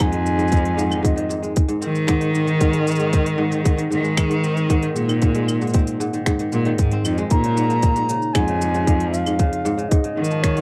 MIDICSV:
0, 0, Header, 1, 5, 480
1, 0, Start_track
1, 0, Tempo, 521739
1, 962, Time_signature, 4, 2, 24, 8
1, 9762, End_track
2, 0, Start_track
2, 0, Title_t, "Flute"
2, 0, Program_c, 0, 73
2, 21, Note_on_c, 0, 80, 114
2, 954, Note_off_c, 0, 80, 0
2, 959, Note_on_c, 0, 75, 80
2, 1407, Note_off_c, 0, 75, 0
2, 6721, Note_on_c, 0, 82, 120
2, 7667, Note_on_c, 0, 80, 106
2, 7681, Note_off_c, 0, 82, 0
2, 8374, Note_off_c, 0, 80, 0
2, 8380, Note_on_c, 0, 77, 102
2, 9056, Note_off_c, 0, 77, 0
2, 9056, Note_on_c, 0, 77, 64
2, 9095, Note_on_c, 0, 75, 95
2, 9109, Note_off_c, 0, 77, 0
2, 9588, Note_on_c, 0, 73, 81
2, 9601, Note_off_c, 0, 75, 0
2, 9762, Note_off_c, 0, 73, 0
2, 9762, End_track
3, 0, Start_track
3, 0, Title_t, "Kora"
3, 0, Program_c, 1, 46
3, 0, Note_on_c, 1, 44, 85
3, 0, Note_on_c, 1, 51, 70
3, 0, Note_on_c, 1, 60, 74
3, 109, Note_on_c, 1, 56, 70
3, 339, Note_off_c, 1, 44, 0
3, 350, Note_on_c, 1, 44, 76
3, 466, Note_off_c, 1, 60, 0
3, 470, Note_on_c, 1, 60, 75
3, 701, Note_off_c, 1, 44, 0
3, 712, Note_on_c, 1, 44, 86
3, 817, Note_off_c, 1, 51, 0
3, 828, Note_on_c, 1, 51, 79
3, 888, Note_off_c, 1, 56, 0
3, 933, Note_off_c, 1, 44, 0
3, 944, Note_on_c, 1, 44, 76
3, 1055, Note_off_c, 1, 51, 0
3, 1066, Note_on_c, 1, 51, 73
3, 1178, Note_off_c, 1, 44, 0
3, 1189, Note_on_c, 1, 44, 79
3, 1310, Note_on_c, 1, 56, 71
3, 1538, Note_off_c, 1, 44, 0
3, 1549, Note_on_c, 1, 44, 76
3, 1666, Note_off_c, 1, 60, 0
3, 1670, Note_on_c, 1, 60, 77
3, 1894, Note_off_c, 1, 44, 0
3, 1905, Note_on_c, 1, 44, 106
3, 2017, Note_off_c, 1, 51, 0
3, 2028, Note_on_c, 1, 51, 73
3, 2088, Note_off_c, 1, 56, 0
3, 2135, Note_off_c, 1, 44, 0
3, 2146, Note_on_c, 1, 44, 78
3, 2259, Note_off_c, 1, 51, 0
3, 2270, Note_on_c, 1, 51, 77
3, 2383, Note_off_c, 1, 44, 0
3, 2394, Note_on_c, 1, 44, 79
3, 2511, Note_on_c, 1, 56, 81
3, 2738, Note_off_c, 1, 44, 0
3, 2750, Note_on_c, 1, 44, 74
3, 2868, Note_off_c, 1, 60, 0
3, 2872, Note_on_c, 1, 60, 81
3, 3097, Note_off_c, 1, 44, 0
3, 3108, Note_on_c, 1, 44, 106
3, 3216, Note_off_c, 1, 51, 0
3, 3227, Note_on_c, 1, 51, 73
3, 3288, Note_off_c, 1, 56, 0
3, 3340, Note_off_c, 1, 44, 0
3, 3351, Note_on_c, 1, 44, 87
3, 3459, Note_off_c, 1, 51, 0
3, 3470, Note_on_c, 1, 51, 78
3, 3581, Note_off_c, 1, 44, 0
3, 3592, Note_on_c, 1, 44, 75
3, 3708, Note_on_c, 1, 56, 79
3, 3941, Note_off_c, 1, 44, 0
3, 3952, Note_on_c, 1, 44, 69
3, 4072, Note_off_c, 1, 60, 0
3, 4076, Note_on_c, 1, 60, 78
3, 4306, Note_off_c, 1, 44, 0
3, 4317, Note_on_c, 1, 44, 91
3, 4428, Note_off_c, 1, 51, 0
3, 4439, Note_on_c, 1, 51, 75
3, 4488, Note_off_c, 1, 56, 0
3, 4549, Note_off_c, 1, 44, 0
3, 4560, Note_on_c, 1, 44, 72
3, 4667, Note_off_c, 1, 51, 0
3, 4678, Note_on_c, 1, 51, 72
3, 4788, Note_off_c, 1, 44, 0
3, 4799, Note_on_c, 1, 44, 80
3, 4924, Note_on_c, 1, 56, 80
3, 5151, Note_off_c, 1, 44, 0
3, 5162, Note_on_c, 1, 44, 76
3, 5278, Note_off_c, 1, 60, 0
3, 5281, Note_on_c, 1, 60, 87
3, 5509, Note_off_c, 1, 44, 0
3, 5520, Note_on_c, 1, 44, 96
3, 5633, Note_off_c, 1, 51, 0
3, 5644, Note_on_c, 1, 51, 73
3, 5688, Note_off_c, 1, 56, 0
3, 5749, Note_off_c, 1, 44, 0
3, 5760, Note_on_c, 1, 44, 79
3, 5874, Note_off_c, 1, 51, 0
3, 5885, Note_on_c, 1, 51, 71
3, 5997, Note_off_c, 1, 44, 0
3, 6008, Note_on_c, 1, 44, 78
3, 6115, Note_off_c, 1, 51, 0
3, 6126, Note_on_c, 1, 51, 96
3, 6366, Note_off_c, 1, 60, 0
3, 6370, Note_on_c, 1, 60, 97
3, 6477, Note_off_c, 1, 51, 0
3, 6488, Note_on_c, 1, 51, 87
3, 6605, Note_on_c, 1, 56, 100
3, 6716, Note_off_c, 1, 44, 0
3, 6727, Note_on_c, 1, 44, 76
3, 6768, Note_off_c, 1, 51, 0
3, 6768, Note_off_c, 1, 56, 0
3, 6845, Note_on_c, 1, 49, 71
3, 6888, Note_off_c, 1, 44, 0
3, 6900, Note_off_c, 1, 60, 0
3, 6962, Note_on_c, 1, 44, 78
3, 7008, Note_off_c, 1, 49, 0
3, 7081, Note_on_c, 1, 53, 73
3, 7312, Note_off_c, 1, 44, 0
3, 7323, Note_on_c, 1, 44, 75
3, 7443, Note_on_c, 1, 49, 73
3, 7488, Note_off_c, 1, 44, 0
3, 7488, Note_off_c, 1, 53, 0
3, 7679, Note_on_c, 1, 44, 101
3, 7728, Note_off_c, 1, 49, 0
3, 7804, Note_on_c, 1, 49, 78
3, 7848, Note_off_c, 1, 44, 0
3, 7925, Note_on_c, 1, 44, 81
3, 7968, Note_off_c, 1, 49, 0
3, 8045, Note_on_c, 1, 49, 77
3, 8088, Note_off_c, 1, 44, 0
3, 8163, Note_on_c, 1, 44, 77
3, 8208, Note_off_c, 1, 49, 0
3, 8284, Note_on_c, 1, 53, 74
3, 8514, Note_off_c, 1, 44, 0
3, 8525, Note_on_c, 1, 44, 72
3, 8639, Note_on_c, 1, 49, 73
3, 8688, Note_off_c, 1, 44, 0
3, 8688, Note_off_c, 1, 53, 0
3, 8878, Note_on_c, 1, 44, 110
3, 8928, Note_off_c, 1, 49, 0
3, 8993, Note_on_c, 1, 49, 75
3, 9048, Note_off_c, 1, 44, 0
3, 9119, Note_on_c, 1, 44, 90
3, 9168, Note_off_c, 1, 49, 0
3, 9237, Note_on_c, 1, 49, 71
3, 9288, Note_off_c, 1, 44, 0
3, 9359, Note_on_c, 1, 44, 71
3, 9408, Note_off_c, 1, 49, 0
3, 9480, Note_on_c, 1, 53, 69
3, 9709, Note_off_c, 1, 44, 0
3, 9720, Note_on_c, 1, 44, 75
3, 9762, Note_off_c, 1, 44, 0
3, 9762, Note_off_c, 1, 53, 0
3, 9762, End_track
4, 0, Start_track
4, 0, Title_t, "Cello"
4, 0, Program_c, 2, 42
4, 3, Note_on_c, 2, 41, 96
4, 1167, Note_off_c, 2, 41, 0
4, 1680, Note_on_c, 2, 51, 101
4, 3565, Note_off_c, 2, 51, 0
4, 3605, Note_on_c, 2, 51, 93
4, 4528, Note_off_c, 2, 51, 0
4, 4561, Note_on_c, 2, 46, 99
4, 5486, Note_off_c, 2, 46, 0
4, 6005, Note_on_c, 2, 46, 93
4, 6242, Note_off_c, 2, 46, 0
4, 6247, Note_on_c, 2, 44, 75
4, 6440, Note_off_c, 2, 44, 0
4, 6486, Note_on_c, 2, 41, 82
4, 6680, Note_off_c, 2, 41, 0
4, 6726, Note_on_c, 2, 46, 97
4, 7409, Note_off_c, 2, 46, 0
4, 7685, Note_on_c, 2, 41, 94
4, 8848, Note_off_c, 2, 41, 0
4, 9360, Note_on_c, 2, 51, 100
4, 9762, Note_off_c, 2, 51, 0
4, 9762, End_track
5, 0, Start_track
5, 0, Title_t, "Drums"
5, 0, Note_on_c, 9, 26, 72
5, 0, Note_on_c, 9, 46, 64
5, 0, Note_on_c, 9, 75, 75
5, 0, Note_on_c, 9, 82, 47
5, 3, Note_on_c, 9, 36, 103
5, 87, Note_off_c, 9, 26, 0
5, 87, Note_off_c, 9, 46, 0
5, 87, Note_off_c, 9, 75, 0
5, 90, Note_off_c, 9, 82, 0
5, 95, Note_off_c, 9, 36, 0
5, 115, Note_on_c, 9, 46, 41
5, 207, Note_off_c, 9, 46, 0
5, 241, Note_on_c, 9, 82, 79
5, 333, Note_off_c, 9, 82, 0
5, 359, Note_on_c, 9, 46, 29
5, 361, Note_on_c, 9, 82, 33
5, 440, Note_off_c, 9, 82, 0
5, 440, Note_on_c, 9, 82, 25
5, 451, Note_off_c, 9, 46, 0
5, 477, Note_on_c, 9, 46, 63
5, 480, Note_off_c, 9, 82, 0
5, 480, Note_on_c, 9, 82, 45
5, 482, Note_on_c, 9, 36, 88
5, 520, Note_off_c, 9, 82, 0
5, 520, Note_on_c, 9, 82, 21
5, 569, Note_off_c, 9, 46, 0
5, 574, Note_off_c, 9, 36, 0
5, 601, Note_on_c, 9, 46, 37
5, 612, Note_off_c, 9, 82, 0
5, 693, Note_off_c, 9, 46, 0
5, 723, Note_on_c, 9, 82, 81
5, 815, Note_off_c, 9, 82, 0
5, 842, Note_on_c, 9, 75, 59
5, 844, Note_on_c, 9, 82, 36
5, 934, Note_off_c, 9, 75, 0
5, 936, Note_off_c, 9, 82, 0
5, 962, Note_on_c, 9, 36, 97
5, 964, Note_on_c, 9, 46, 59
5, 966, Note_on_c, 9, 82, 41
5, 1054, Note_off_c, 9, 36, 0
5, 1056, Note_off_c, 9, 46, 0
5, 1058, Note_off_c, 9, 82, 0
5, 1082, Note_on_c, 9, 46, 44
5, 1174, Note_off_c, 9, 46, 0
5, 1200, Note_on_c, 9, 82, 72
5, 1292, Note_off_c, 9, 82, 0
5, 1319, Note_on_c, 9, 46, 31
5, 1322, Note_on_c, 9, 82, 33
5, 1411, Note_off_c, 9, 46, 0
5, 1414, Note_off_c, 9, 82, 0
5, 1436, Note_on_c, 9, 46, 68
5, 1439, Note_on_c, 9, 82, 40
5, 1442, Note_on_c, 9, 36, 103
5, 1528, Note_off_c, 9, 46, 0
5, 1531, Note_off_c, 9, 82, 0
5, 1534, Note_off_c, 9, 36, 0
5, 1551, Note_on_c, 9, 46, 40
5, 1554, Note_on_c, 9, 82, 27
5, 1643, Note_off_c, 9, 46, 0
5, 1646, Note_off_c, 9, 82, 0
5, 1675, Note_on_c, 9, 82, 76
5, 1767, Note_off_c, 9, 82, 0
5, 1796, Note_on_c, 9, 82, 31
5, 1888, Note_off_c, 9, 82, 0
5, 1914, Note_on_c, 9, 26, 76
5, 1914, Note_on_c, 9, 46, 67
5, 1917, Note_on_c, 9, 82, 46
5, 1922, Note_on_c, 9, 36, 94
5, 2006, Note_off_c, 9, 26, 0
5, 2006, Note_off_c, 9, 46, 0
5, 2009, Note_off_c, 9, 82, 0
5, 2014, Note_off_c, 9, 36, 0
5, 2035, Note_on_c, 9, 46, 45
5, 2127, Note_off_c, 9, 46, 0
5, 2160, Note_on_c, 9, 82, 78
5, 2252, Note_off_c, 9, 82, 0
5, 2276, Note_on_c, 9, 46, 30
5, 2279, Note_on_c, 9, 82, 33
5, 2368, Note_off_c, 9, 46, 0
5, 2371, Note_off_c, 9, 82, 0
5, 2397, Note_on_c, 9, 46, 70
5, 2400, Note_on_c, 9, 82, 41
5, 2401, Note_on_c, 9, 36, 91
5, 2489, Note_off_c, 9, 46, 0
5, 2492, Note_off_c, 9, 82, 0
5, 2493, Note_off_c, 9, 36, 0
5, 2514, Note_on_c, 9, 46, 45
5, 2606, Note_off_c, 9, 46, 0
5, 2641, Note_on_c, 9, 82, 75
5, 2680, Note_off_c, 9, 82, 0
5, 2680, Note_on_c, 9, 82, 62
5, 2718, Note_off_c, 9, 82, 0
5, 2718, Note_on_c, 9, 82, 50
5, 2755, Note_on_c, 9, 46, 30
5, 2757, Note_off_c, 9, 82, 0
5, 2757, Note_on_c, 9, 82, 35
5, 2847, Note_off_c, 9, 46, 0
5, 2849, Note_off_c, 9, 82, 0
5, 2878, Note_on_c, 9, 46, 69
5, 2881, Note_on_c, 9, 82, 42
5, 2882, Note_on_c, 9, 36, 96
5, 2970, Note_off_c, 9, 46, 0
5, 2973, Note_off_c, 9, 82, 0
5, 2974, Note_off_c, 9, 36, 0
5, 3001, Note_on_c, 9, 46, 47
5, 3093, Note_off_c, 9, 46, 0
5, 3236, Note_on_c, 9, 46, 30
5, 3238, Note_on_c, 9, 82, 32
5, 3328, Note_off_c, 9, 46, 0
5, 3330, Note_off_c, 9, 82, 0
5, 3361, Note_on_c, 9, 46, 69
5, 3363, Note_on_c, 9, 36, 98
5, 3364, Note_on_c, 9, 82, 42
5, 3453, Note_off_c, 9, 46, 0
5, 3455, Note_off_c, 9, 36, 0
5, 3456, Note_off_c, 9, 82, 0
5, 3482, Note_on_c, 9, 46, 43
5, 3484, Note_on_c, 9, 82, 27
5, 3574, Note_off_c, 9, 46, 0
5, 3576, Note_off_c, 9, 82, 0
5, 3604, Note_on_c, 9, 82, 72
5, 3696, Note_off_c, 9, 82, 0
5, 3721, Note_on_c, 9, 82, 31
5, 3813, Note_off_c, 9, 82, 0
5, 3840, Note_on_c, 9, 26, 76
5, 3840, Note_on_c, 9, 46, 68
5, 3840, Note_on_c, 9, 75, 81
5, 3842, Note_on_c, 9, 82, 46
5, 3844, Note_on_c, 9, 36, 96
5, 3932, Note_off_c, 9, 26, 0
5, 3932, Note_off_c, 9, 46, 0
5, 3932, Note_off_c, 9, 75, 0
5, 3934, Note_off_c, 9, 82, 0
5, 3936, Note_off_c, 9, 36, 0
5, 3963, Note_on_c, 9, 46, 46
5, 4055, Note_off_c, 9, 46, 0
5, 4083, Note_on_c, 9, 82, 78
5, 4175, Note_off_c, 9, 82, 0
5, 4203, Note_on_c, 9, 46, 32
5, 4205, Note_on_c, 9, 82, 31
5, 4295, Note_off_c, 9, 46, 0
5, 4297, Note_off_c, 9, 82, 0
5, 4323, Note_on_c, 9, 46, 68
5, 4324, Note_on_c, 9, 36, 85
5, 4326, Note_on_c, 9, 82, 43
5, 4415, Note_off_c, 9, 46, 0
5, 4416, Note_off_c, 9, 36, 0
5, 4418, Note_off_c, 9, 82, 0
5, 4439, Note_on_c, 9, 46, 42
5, 4531, Note_off_c, 9, 46, 0
5, 4563, Note_on_c, 9, 82, 78
5, 4655, Note_off_c, 9, 82, 0
5, 4685, Note_on_c, 9, 46, 32
5, 4685, Note_on_c, 9, 75, 64
5, 4687, Note_on_c, 9, 82, 32
5, 4777, Note_off_c, 9, 46, 0
5, 4777, Note_off_c, 9, 75, 0
5, 4779, Note_off_c, 9, 82, 0
5, 4799, Note_on_c, 9, 46, 66
5, 4802, Note_on_c, 9, 82, 40
5, 4805, Note_on_c, 9, 36, 97
5, 4891, Note_off_c, 9, 46, 0
5, 4894, Note_off_c, 9, 82, 0
5, 4897, Note_off_c, 9, 36, 0
5, 4919, Note_on_c, 9, 46, 46
5, 5011, Note_off_c, 9, 46, 0
5, 5044, Note_on_c, 9, 75, 65
5, 5047, Note_on_c, 9, 82, 73
5, 5136, Note_off_c, 9, 75, 0
5, 5139, Note_off_c, 9, 82, 0
5, 5166, Note_on_c, 9, 82, 29
5, 5219, Note_on_c, 9, 46, 31
5, 5239, Note_off_c, 9, 82, 0
5, 5239, Note_on_c, 9, 82, 25
5, 5277, Note_off_c, 9, 46, 0
5, 5277, Note_on_c, 9, 46, 70
5, 5280, Note_off_c, 9, 82, 0
5, 5280, Note_on_c, 9, 82, 44
5, 5285, Note_on_c, 9, 36, 105
5, 5323, Note_off_c, 9, 82, 0
5, 5323, Note_on_c, 9, 82, 19
5, 5369, Note_off_c, 9, 46, 0
5, 5377, Note_off_c, 9, 36, 0
5, 5402, Note_on_c, 9, 46, 44
5, 5405, Note_off_c, 9, 82, 0
5, 5405, Note_on_c, 9, 82, 29
5, 5494, Note_off_c, 9, 46, 0
5, 5497, Note_off_c, 9, 82, 0
5, 5527, Note_on_c, 9, 82, 78
5, 5619, Note_off_c, 9, 82, 0
5, 5643, Note_on_c, 9, 46, 31
5, 5646, Note_on_c, 9, 82, 32
5, 5735, Note_off_c, 9, 46, 0
5, 5738, Note_off_c, 9, 82, 0
5, 5762, Note_on_c, 9, 26, 85
5, 5762, Note_on_c, 9, 46, 72
5, 5764, Note_on_c, 9, 82, 43
5, 5765, Note_on_c, 9, 36, 102
5, 5854, Note_off_c, 9, 26, 0
5, 5854, Note_off_c, 9, 46, 0
5, 5856, Note_off_c, 9, 82, 0
5, 5857, Note_off_c, 9, 36, 0
5, 5881, Note_on_c, 9, 46, 46
5, 5884, Note_on_c, 9, 82, 28
5, 5973, Note_off_c, 9, 46, 0
5, 5976, Note_off_c, 9, 82, 0
5, 6002, Note_on_c, 9, 82, 77
5, 6094, Note_off_c, 9, 82, 0
5, 6121, Note_on_c, 9, 46, 32
5, 6213, Note_off_c, 9, 46, 0
5, 6241, Note_on_c, 9, 46, 72
5, 6243, Note_on_c, 9, 82, 46
5, 6245, Note_on_c, 9, 36, 93
5, 6333, Note_off_c, 9, 46, 0
5, 6335, Note_off_c, 9, 82, 0
5, 6337, Note_off_c, 9, 36, 0
5, 6362, Note_on_c, 9, 46, 42
5, 6454, Note_off_c, 9, 46, 0
5, 6483, Note_on_c, 9, 75, 63
5, 6486, Note_on_c, 9, 82, 82
5, 6575, Note_off_c, 9, 75, 0
5, 6578, Note_off_c, 9, 82, 0
5, 6603, Note_on_c, 9, 46, 32
5, 6606, Note_on_c, 9, 82, 33
5, 6695, Note_off_c, 9, 46, 0
5, 6698, Note_off_c, 9, 82, 0
5, 6718, Note_on_c, 9, 46, 64
5, 6721, Note_on_c, 9, 82, 43
5, 6725, Note_on_c, 9, 36, 99
5, 6810, Note_off_c, 9, 46, 0
5, 6813, Note_off_c, 9, 82, 0
5, 6817, Note_off_c, 9, 36, 0
5, 6843, Note_on_c, 9, 46, 46
5, 6935, Note_off_c, 9, 46, 0
5, 6966, Note_on_c, 9, 82, 80
5, 7058, Note_off_c, 9, 82, 0
5, 7084, Note_on_c, 9, 46, 32
5, 7087, Note_on_c, 9, 82, 32
5, 7176, Note_off_c, 9, 46, 0
5, 7179, Note_off_c, 9, 82, 0
5, 7199, Note_on_c, 9, 46, 68
5, 7201, Note_on_c, 9, 82, 44
5, 7204, Note_on_c, 9, 36, 96
5, 7291, Note_off_c, 9, 46, 0
5, 7293, Note_off_c, 9, 82, 0
5, 7296, Note_off_c, 9, 36, 0
5, 7323, Note_on_c, 9, 46, 43
5, 7326, Note_on_c, 9, 82, 29
5, 7415, Note_off_c, 9, 46, 0
5, 7418, Note_off_c, 9, 82, 0
5, 7445, Note_on_c, 9, 82, 85
5, 7537, Note_off_c, 9, 82, 0
5, 7564, Note_on_c, 9, 82, 32
5, 7656, Note_off_c, 9, 82, 0
5, 7682, Note_on_c, 9, 26, 85
5, 7682, Note_on_c, 9, 46, 73
5, 7682, Note_on_c, 9, 75, 74
5, 7684, Note_on_c, 9, 36, 107
5, 7684, Note_on_c, 9, 82, 44
5, 7774, Note_off_c, 9, 26, 0
5, 7774, Note_off_c, 9, 46, 0
5, 7774, Note_off_c, 9, 75, 0
5, 7776, Note_off_c, 9, 36, 0
5, 7776, Note_off_c, 9, 82, 0
5, 7800, Note_on_c, 9, 46, 47
5, 7892, Note_off_c, 9, 46, 0
5, 7927, Note_on_c, 9, 82, 85
5, 8019, Note_off_c, 9, 82, 0
5, 8044, Note_on_c, 9, 46, 31
5, 8047, Note_on_c, 9, 82, 34
5, 8136, Note_off_c, 9, 46, 0
5, 8139, Note_off_c, 9, 82, 0
5, 8164, Note_on_c, 9, 36, 96
5, 8165, Note_on_c, 9, 46, 73
5, 8167, Note_on_c, 9, 82, 45
5, 8256, Note_off_c, 9, 36, 0
5, 8257, Note_off_c, 9, 46, 0
5, 8259, Note_off_c, 9, 82, 0
5, 8283, Note_on_c, 9, 46, 45
5, 8375, Note_off_c, 9, 46, 0
5, 8407, Note_on_c, 9, 82, 87
5, 8499, Note_off_c, 9, 82, 0
5, 8523, Note_on_c, 9, 46, 33
5, 8523, Note_on_c, 9, 75, 61
5, 8525, Note_on_c, 9, 82, 35
5, 8615, Note_off_c, 9, 46, 0
5, 8615, Note_off_c, 9, 75, 0
5, 8617, Note_off_c, 9, 82, 0
5, 8640, Note_on_c, 9, 46, 65
5, 8642, Note_on_c, 9, 82, 44
5, 8643, Note_on_c, 9, 36, 106
5, 8732, Note_off_c, 9, 46, 0
5, 8734, Note_off_c, 9, 82, 0
5, 8735, Note_off_c, 9, 36, 0
5, 8766, Note_on_c, 9, 46, 47
5, 8858, Note_off_c, 9, 46, 0
5, 8884, Note_on_c, 9, 82, 83
5, 8976, Note_off_c, 9, 82, 0
5, 9003, Note_on_c, 9, 46, 31
5, 9006, Note_on_c, 9, 82, 33
5, 9095, Note_off_c, 9, 46, 0
5, 9098, Note_off_c, 9, 82, 0
5, 9120, Note_on_c, 9, 46, 71
5, 9122, Note_on_c, 9, 36, 116
5, 9123, Note_on_c, 9, 82, 48
5, 9212, Note_off_c, 9, 46, 0
5, 9214, Note_off_c, 9, 36, 0
5, 9215, Note_off_c, 9, 82, 0
5, 9238, Note_on_c, 9, 46, 45
5, 9330, Note_off_c, 9, 46, 0
5, 9423, Note_on_c, 9, 82, 85
5, 9485, Note_off_c, 9, 82, 0
5, 9485, Note_on_c, 9, 82, 34
5, 9577, Note_off_c, 9, 82, 0
5, 9601, Note_on_c, 9, 26, 90
5, 9601, Note_on_c, 9, 46, 72
5, 9602, Note_on_c, 9, 36, 105
5, 9604, Note_on_c, 9, 82, 50
5, 9693, Note_off_c, 9, 26, 0
5, 9693, Note_off_c, 9, 46, 0
5, 9694, Note_off_c, 9, 36, 0
5, 9696, Note_off_c, 9, 82, 0
5, 9723, Note_on_c, 9, 46, 45
5, 9762, Note_off_c, 9, 46, 0
5, 9762, End_track
0, 0, End_of_file